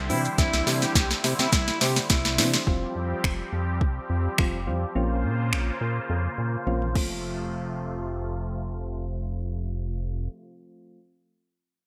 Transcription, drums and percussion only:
0.10 open hi-hat, shaker
0.25 shaker
0.38 kick, snare, closed hi-hat, shaker
0.53 snare, shaker
0.67 snare, open hi-hat, shaker
0.82 snare, shaker
0.95 kick, snare, closed hi-hat, shaker
1.11 snare, shaker
1.24 snare, open hi-hat, shaker
1.39 snare, shaker
1.52 kick, snare, closed hi-hat, shaker
1.68 snare, shaker
1.81 snare, open hi-hat, shaker
1.96 snare, shaker
2.10 kick, snare, closed hi-hat, shaker
2.25 snare, shaker
2.38 snare, open hi-hat, shaker
2.54 snare, shaker
2.67 kick
3.24 finger snap, kick
3.81 kick
4.38 finger snap, kick
5.53 finger snap
6.67 high tom
6.82 mid tom
6.95 kick, crash

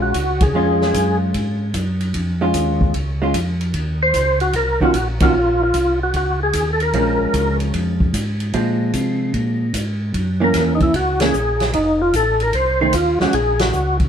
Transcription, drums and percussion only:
0.14 kick, hi-hat pedal, ride
0.41 kick, ride
0.81 snare
0.94 kick, hi-hat pedal, ride
1.34 kick, ride
1.74 kick, hi-hat pedal, ride
2.00 ride
2.14 kick, ride
2.54 kick, hi-hat pedal, ride
2.81 kick
2.94 kick, ride
3.34 kick, hi-hat pedal, ride
3.61 ride
3.74 kick, ride
4.14 kick, hi-hat pedal, ride
4.40 ride
4.53 kick, ride
4.81 kick
4.94 kick, hi-hat pedal, ride
5.20 kick, ride
5.74 kick, hi-hat pedal, ride
6.14 kick, ride
6.53 kick, hi-hat pedal, ride
6.80 ride
6.93 kick, ride
7.34 kick, hi-hat pedal, ride
7.60 ride
7.74 kick, ride
8.00 kick
8.14 kick, hi-hat pedal, ride
8.40 ride
8.53 kick, ride
8.93 kick, hi-hat pedal, ride
9.34 kick, ride
9.74 kick, hi-hat pedal, ride
10.14 kick, ride
10.54 kick, snare, hi-hat pedal, ride
10.80 kick, ride
10.94 kick, ride
11.20 snare, ride
11.34 hi-hat pedal
11.60 snare, ride
11.73 kick, ride
12.13 kick, hi-hat pedal, ride
12.40 ride
12.53 kick, ride
12.93 kick, hi-hat pedal, ride
13.20 snare
13.33 kick, ride
13.59 snare, ride
13.73 hi-hat pedal
14.00 kick, ride

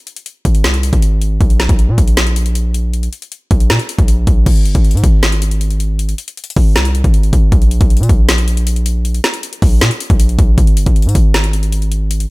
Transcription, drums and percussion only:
0.07 closed hi-hat
0.16 closed hi-hat
0.26 closed hi-hat
0.45 kick, closed hi-hat
0.55 closed hi-hat
0.64 snare, closed hi-hat
0.74 closed hi-hat
0.83 closed hi-hat
0.93 kick, closed hi-hat
1.02 closed hi-hat
1.22 closed hi-hat
1.41 kick, closed hi-hat
1.50 closed hi-hat
1.60 snare, closed hi-hat
1.69 kick, closed hi-hat
1.79 closed hi-hat
1.98 kick, closed hi-hat
2.08 closed hi-hat
2.17 snare, closed hi-hat
2.27 closed hi-hat
2.36 closed hi-hat
2.46 closed hi-hat
2.55 closed hi-hat
2.74 closed hi-hat
2.93 closed hi-hat
3.03 closed hi-hat
3.13 closed hi-hat
3.22 closed hi-hat
3.32 closed hi-hat
3.51 kick, closed hi-hat
3.60 closed hi-hat
3.70 snare, closed hi-hat
3.79 closed hi-hat
3.89 closed hi-hat
3.99 kick, closed hi-hat
4.08 closed hi-hat
4.27 kick, closed hi-hat
4.46 kick, closed hi-hat, crash
4.56 closed hi-hat
4.65 closed hi-hat
4.75 kick, closed hi-hat
4.85 closed hi-hat
4.91 closed hi-hat
4.97 closed hi-hat
5.04 kick, closed hi-hat
5.23 snare, closed hi-hat
5.32 closed hi-hat
5.42 closed hi-hat
5.51 closed hi-hat
5.61 closed hi-hat
5.71 closed hi-hat
5.80 closed hi-hat
5.99 closed hi-hat
6.09 closed hi-hat
6.18 closed hi-hat
6.28 closed hi-hat
6.37 closed hi-hat
6.44 closed hi-hat
6.50 closed hi-hat
6.56 kick, open hi-hat
6.76 snare, closed hi-hat
6.85 closed hi-hat
6.95 closed hi-hat
7.04 kick, closed hi-hat
7.14 closed hi-hat
7.23 closed hi-hat
7.33 kick, closed hi-hat
7.52 kick, closed hi-hat
7.62 closed hi-hat
7.71 closed hi-hat
7.81 kick, closed hi-hat
7.90 closed hi-hat
7.97 closed hi-hat
8.03 closed hi-hat
8.09 kick, closed hi-hat
8.29 snare, closed hi-hat
8.38 closed hi-hat
8.48 closed hi-hat
8.57 closed hi-hat
8.67 closed hi-hat
8.76 closed hi-hat
8.86 closed hi-hat
9.05 closed hi-hat
9.14 closed hi-hat
9.24 snare, closed hi-hat
9.34 closed hi-hat
9.43 closed hi-hat
9.53 closed hi-hat
9.62 kick, open hi-hat
9.81 snare, closed hi-hat
9.91 closed hi-hat
10.00 closed hi-hat
10.10 kick, closed hi-hat
10.20 closed hi-hat
10.29 closed hi-hat
10.39 kick, closed hi-hat
10.58 kick, closed hi-hat
10.67 closed hi-hat
10.77 closed hi-hat
10.86 kick, closed hi-hat
10.96 closed hi-hat
11.02 closed hi-hat
11.09 closed hi-hat
11.15 kick, closed hi-hat
11.34 snare, closed hi-hat
11.44 closed hi-hat
11.53 closed hi-hat
11.63 closed hi-hat
11.72 closed hi-hat
11.82 closed hi-hat
11.92 closed hi-hat
12.11 closed hi-hat
12.20 closed hi-hat

